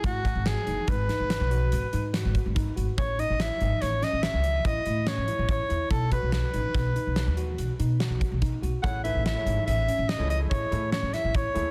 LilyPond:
<<
  \new Staff \with { instrumentName = "Soprano saxophone" } { \time 7/4 \key a \lydian \tempo 4 = 143 fis'4 gis'4 b'2. r2 | cis''8 dis''8 e''4 cis''8 dis''8 e''4 dis''4 cis''4 cis''4 | a'8 b'8 b'2. r2. | fis''8 e''8 e''4 e''4 dis''8 dis''8 cis''4 cis''8 e''8 cis''4 | }
  \new Staff \with { instrumentName = "Grand piano" } { \time 7/4 \key a \lydian r1. r4 | r1. r4 | r1. r4 | <a e' gis' cis''>16 r16 <a e' gis' b'>8 r16 <a e' gis' cis''>4. r8 <a e' gis' cis''>16 r16 <a e' gis' dis''>8 r16 <a e' gis' cis''>4. r8 <a e' gis' cis''>16 r16 | }
  \new Staff \with { instrumentName = "Tine electric piano" } { \time 7/4 \key a \lydian e'8 fis'4 dis'4 dis'4 fis'4 dis'8 fis'4 dis'8 fis'8 | r8 dis'8 e'8 dis'4 cis'4 r8 e'8 e'8 cis'8 e'4 e'8~ | e'8 fis'4 dis'4 dis'4 fis'4 dis'8 fis'4 dis'8 fis'8 | r8 dis'8 e'8 dis'4 cis'4 r8 e'8 e'8 cis'8 e'4 e'8 | }
  \new Staff \with { instrumentName = "Upright bass" } { \clef bass \time 7/4 \key a \lydian gis,,8. gis,,8 r16 fis,,16 r16 gis,,8 r16 gis,,8 b,,8. gis,,16 r16 gis,8. gis,,16 r16 gis,,8 r16 gis,,16 r16 | a,,8. a,,8 r16 gis,,16 r16 a,,8 r16 a,,8 cis,8. a,,16 r16 a,8. a,,16 r16 a,,8 r16 e,16 r16 | b,,8. b,,8 r16 a,,16 r16 b,,8 r16 b,,8 dis,8. b,,16 r16 b,8. b,,16 r16 b,,8 r16 b,,16 r16 | a,,8. a,,8 r16 gis,,16 r16 a,,8 r16 a,,8 cis,8. a,,16 r16 a,8. a,,16 r16 a,,8 r16 dis,16 r16 | }
  \new DrumStaff \with { instrumentName = "Drums" } \drummode { \time 7/4 <hh bd>8 <hh bd>8 <hh sn>8 hh8 <hh bd>8 <hh sn>8 <hh sn>8 hh8 hh8 hh8 <hh sn>8 <hh bd>8 <hh bd>8 hh8 | <hh bd>8 hh8 <hh sn>8 hh8 <hh sn>8 <hh sn>8 <hh sn>8 hh8 <hh bd>8 hh8 <hh sn>8 hh8 <hh bd>8 hh8 | <hh bd>8 <hh bd>8 <hh sn>8 hh8 <hh bd sn>8 hh8 <hh sn>8 hh8 hh8 hh8 <hh sn>8 <hh bd>8 <hh bd>8 hh8 | <hh bd>8 hh8 <hh sn>8 hh8 hh8 hh8 <hh sn>8 hh8 <hh bd>8 hh8 <hh sn>8 <hh sn>8 <hh bd>8 hh8 | }
>>